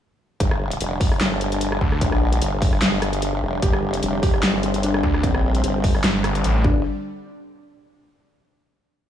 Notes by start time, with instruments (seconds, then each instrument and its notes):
0.40 wobble bass G1, supersaw synth D3 G3 D4, kick, closed hi-hat
0.51 cross-stick
0.71 closed hi-hat
0.81 wobble bass F1, closed hi-hat
1.01 kick, open hi-hat
1.12 cross-stick
1.21 wobble bass G1, snare, clap, closed hi-hat
1.41 closed hi-hat
1.52 closed hi-hat
1.61 closed hi-hat
1.72 cross-stick
1.81 detuned saw bass D2, kick
1.92 cross-stick
2.01 wobble bass A#1, kick, closed hi-hat
2.12 cross-stick
2.33 closed hi-hat
2.42 wobble bass G1, closed hi-hat
2.62 kick, open hi-hat
2.73 cross-stick
2.82 wobble bass G1, snare, clap, closed hi-hat
3.02 cross-stick, closed hi-hat
3.13 closed hi-hat
3.22 closed hi-hat
3.42 wobble bass F1
3.62 wobble bass G1, supersaw synth C4, felt piano G4, kick, closed hi-hat
3.73 cross-stick
3.94 closed hi-hat
4.03 wobble bass F1, closed hi-hat
4.23 felt piano G4, kick, open hi-hat
4.34 cross-stick
4.43 wobble bass G1, snare, clap, closed hi-hat
4.63 closed hi-hat
4.74 closed hi-hat
4.83 felt piano D4, closed hi-hat
4.94 cross-stick
5.03 detuned saw bass D2, kick
5.14 cross-stick
5.23 wobble bass A#1, felt piano C4, kick, closed hi-hat
5.35 cross-stick
5.55 closed hi-hat
5.64 wobble bass G1, closed hi-hat
5.84 kick, open hi-hat
5.95 cross-stick
6.04 detuned saw bass G1, snare, clap, closed hi-hat
6.24 cross-stick, closed hi-hat
6.35 closed hi-hat
6.44 detuned saw bass A1, closed hi-hat
6.64 wobble bass G1, felt piano D4, kick